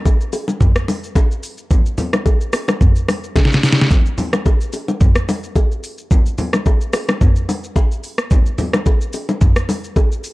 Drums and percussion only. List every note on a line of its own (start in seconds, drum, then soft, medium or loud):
0.06 kick loud
0.06 high bongo medium
0.06 shaker medium
0.21 shaker medium
0.33 open hi-hat medium
0.33 high bongo medium
0.33 shaker medium
0.48 low bongo medium
0.48 shaker medium
0.60 kick loud
0.60 mid tom medium
0.60 low conga medium
0.60 shaker medium
0.76 cross-stick loud
0.76 shaker medium
0.88 open hi-hat medium
0.88 low bongo medium
0.88 shaker medium
1.04 shaker medium
1.15 kick loud
1.15 high bongo medium
1.15 shaker medium
1.31 shaker medium
1.43 open hi-hat medium
1.43 shaker loud
1.58 shaker medium
1.71 kick loud
1.71 low conga medium
1.71 shaker medium
1.86 shaker medium
1.98 open hi-hat soft
1.98 low bongo medium
1.98 low conga medium
1.98 shaker medium
2.13 cross-stick loud
2.13 low bongo medium
2.13 shaker soft
2.26 kick medium
2.26 high bongo medium
2.26 shaker medium
2.41 shaker medium
2.53 cross-stick loud
2.53 open hi-hat medium
2.53 high bongo medium
2.53 shaker loud
2.68 cross-stick loud
2.68 low bongo medium
2.68 shaker medium
2.81 kick loud
2.81 mid tom medium
2.81 low conga medium
2.81 shaker medium
2.96 shaker medium
3.08 cross-stick medium
3.08 open hi-hat medium
3.08 low bongo medium
3.08 shaker medium
3.24 shaker medium
3.36 kick loud
3.36 snare medium
3.36 high bongo medium
3.36 shaker medium
3.45 snare medium
3.52 snare medium
3.52 shaker soft
3.63 snare medium
3.63 open hi-hat medium
3.63 shaker loud
3.72 snare loud
3.78 snare loud
3.78 shaker medium
3.90 kick loud
3.90 low conga medium
3.90 shaker medium
4.06 shaker medium
4.18 open hi-hat medium
4.18 low bongo medium
4.18 low conga medium
4.18 shaker medium
4.33 cross-stick loud
4.33 low bongo medium
4.33 shaker soft
4.46 kick medium
4.46 high bongo medium
4.46 shaker medium
4.61 shaker medium
4.73 open hi-hat medium
4.73 high bongo medium
4.73 shaker medium
4.88 low bongo medium
4.88 shaker medium
5.01 kick loud
5.01 mid tom medium
5.01 low conga medium
5.01 shaker medium
5.15 cross-stick loud
5.15 shaker medium
5.29 open hi-hat medium
5.29 low bongo medium
5.29 shaker loud
5.43 shaker medium
5.56 kick loud
5.56 high bongo medium
5.56 shaker medium
5.71 shaker soft
5.84 open hi-hat medium
5.84 shaker loud
5.98 shaker medium
6.11 kick loud
6.11 low conga medium
6.11 shaker medium
6.26 shaker medium
6.38 open hi-hat soft
6.38 low bongo medium
6.38 low conga medium
6.38 shaker medium
6.53 cross-stick loud
6.53 low bongo medium
6.53 shaker soft
6.66 kick medium
6.66 high bongo medium
6.66 shaker medium
6.81 shaker medium
6.93 cross-stick loud
6.93 open hi-hat medium
6.93 high bongo medium
6.93 shaker medium
7.09 cross-stick loud
7.09 low bongo medium
7.09 shaker medium
7.21 kick loud
7.21 mid tom medium
7.21 low conga medium
7.21 shaker medium
7.36 shaker medium
7.49 open hi-hat medium
7.49 low bongo medium
7.49 shaker loud
7.64 shaker medium
7.76 kick loud
7.76 high bongo medium
7.76 shaker medium
7.92 shaker soft
8.04 open hi-hat medium
8.04 shaker medium
8.18 cross-stick loud
8.18 shaker medium
8.31 kick loud
8.31 low conga medium
8.31 shaker medium
8.46 shaker medium
8.58 open hi-hat soft
8.58 low bongo medium
8.58 low conga medium
8.58 shaker medium
8.73 cross-stick loud
8.73 low bongo medium
8.73 shaker soft
8.86 kick medium
8.86 high bongo medium
8.86 shaker medium
9.01 shaker medium
9.13 open hi-hat medium
9.13 high bongo medium
9.13 shaker loud
9.29 low bongo medium
9.29 shaker medium
9.41 kick loud
9.41 mid tom medium
9.41 low conga medium
9.41 shaker medium
9.56 cross-stick loud
9.56 shaker medium
9.69 open hi-hat medium
9.69 low bongo medium
9.69 shaker loud
9.84 shaker medium
9.96 kick loud
9.96 high bongo medium
9.96 shaker medium
10.12 shaker soft
10.24 open hi-hat medium
10.24 shaker loud